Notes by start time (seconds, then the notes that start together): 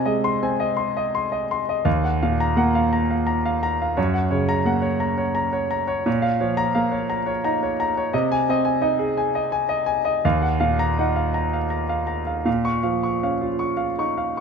Already playing: C3 D#5 G#5
0.05 G#3 D#5
0.24 C6
0.43 C4 G#5
0.60 D#5
0.77 C6
0.97 D#5
1.15 C6
1.32 D#5
1.51 C6
1.69 D#5
1.85 D#2 F5
2.04 F#5
2.22 A#2 F5
2.40 A#5
2.57 A#3 F#5
2.75 F5
2.93 A#5
3.11 F5
3.27 A#5
3.45 F5
3.63 A#5
3.82 F5
3.97 F#2 C#5
4.14 F#5
4.31 C#3 C#5
4.49 A#5
4.65 A#3 F#5
4.82 C#5
5.00 A#5
5.18 C#5
5.35 A#5
5.53 C#5
5.71 A#5
5.87 C#5
6.06 A#2 C#5
6.22 F5
6.40 F3 C#5
6.57 A#5
6.75 A#3 F5
6.91 C#5
7.10 A#5
7.26 C#5
7.44 D#4 A#5
7.63 C#5
7.80 A#5
7.97 C#5
8.13 C3 D#5
8.32 G#5
8.49 C4 D#5
8.65 G#5
8.81 D#4 D#5
8.99 G#4
9.17 G#5
9.35 D#5
9.52 G#5
9.69 D#5
9.86 G#5
10.05 D#5
10.25 D#2 F5
10.42 F#5
10.60 A#2 F5
10.79 A#5
10.99 D#4 F#5
11.16 F5
11.34 A#5
11.53 F5
11.70 A#5
11.89 F5
12.07 A#5
12.27 F5
12.45 A#2 F5
12.65 C#6
12.83 F3 F5
13.03 C#6
13.23 C#4 F5
13.41 F4
13.59 C#6
13.77 F5
13.98 D#4 C#6
14.18 F5
14.37 C#6